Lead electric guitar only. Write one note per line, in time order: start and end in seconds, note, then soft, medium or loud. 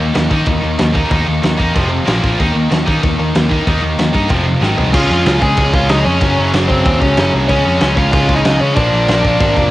4.94 5.39 F4 loud
4.94 5.43 F5 loud
5.42 5.72 G#4 medium
5.42 5.73 G#5 loud
5.74 5.89 F4 medium
5.74 5.89 F5 loud
5.89 6.04 D#4 medium
5.89 6.05 D#5 medium
6.05 6.50 C#4 medium
6.05 6.50 C#5 medium
6.69 6.99 C4 medium
6.69 6.99 C5 loud
7.02 7.31 C#4 medium
7.02 7.31 C#5 medium
7.49 7.93 C#4 medium
7.49 7.98 C#5 loud
7.97 8.12 F4 medium
7.97 8.11 F5 loud
8.12 8.35 F4 medium
8.12 8.35 F5 loud
8.36 8.59 D#4 medium
8.36 8.61 D#5 medium
8.60 8.75 C#4 medium
8.60 8.75 C#5 medium
8.76 9.68 D4 medium
8.76 9.67 D5 medium